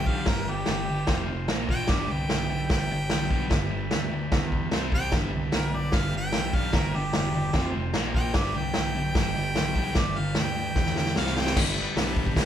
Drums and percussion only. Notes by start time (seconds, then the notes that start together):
0.06 kick
0.26 kick, snare, crash
0.66 snare, crash
1.07 kick, snare, crash
1.48 snare, crash
1.69 kick
1.87 kick, snare, crash
2.29 snare, crash
2.70 kick, snare, crash
3.10 snare, crash
3.31 kick
3.50 kick, snare, crash
3.91 snare, crash
4.32 kick, snare, crash
4.52 kick
4.71 snare, crash
4.92 kick
5.12 kick, snare, crash
5.52 snare, crash
5.92 kick, snare, crash
6.32 snare, crash
6.53 kick
6.73 kick, snare, crash
7.13 snare, crash
7.53 kick, snare, crash
7.94 snare, crash
8.15 kick
8.34 kick, snare, crash
8.74 snare, crash
9.15 kick, snare, crash
9.55 snare, crash
9.76 kick
9.95 kick, snare, crash
10.35 snare, crash
10.75 kick, snare
10.86 snare
10.96 snare
11.06 snare
11.16 snare
11.26 snare
11.37 snare
11.47 snare
11.56 kick, snare, crash
11.97 snare, open hi-hat
12.16 kick
12.27 kick
12.36 kick, snare, open hi-hat